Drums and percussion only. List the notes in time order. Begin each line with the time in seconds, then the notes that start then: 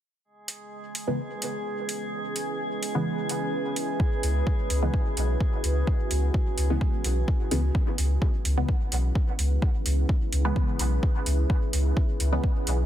0.48 open hi-hat
0.95 open hi-hat
1.42 open hi-hat
1.89 open hi-hat
2.36 open hi-hat
2.83 open hi-hat
3.29 open hi-hat
3.76 open hi-hat
4.00 kick
4.23 open hi-hat
4.47 kick
4.70 open hi-hat
4.94 kick
5.17 open hi-hat
5.40 kick
5.64 open hi-hat
5.87 kick
6.11 open hi-hat
6.34 kick
6.58 open hi-hat
6.81 kick
7.04 open hi-hat
7.28 kick
7.51 open hi-hat
7.75 kick
7.98 open hi-hat
8.22 kick
8.45 open hi-hat
8.69 kick
8.92 open hi-hat
9.15 kick
9.39 open hi-hat
9.62 kick
9.86 open hi-hat
10.09 kick
10.33 open hi-hat
10.56 kick
10.79 open hi-hat
11.03 kick
11.26 open hi-hat
11.50 kick
11.73 open hi-hat
11.97 kick
12.20 open hi-hat
12.44 kick
12.67 open hi-hat